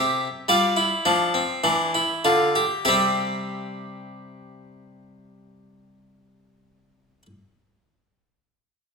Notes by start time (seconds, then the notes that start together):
Already playing: C3 G4 E5
0.48 G3 F4 D5
0.77 E4
1.05 F3 D4
1.34 C4
1.64 E3 D4
1.95 E4
2.25 D3 F4
2.55 G4
2.85 C3 G3 C4 G4 E5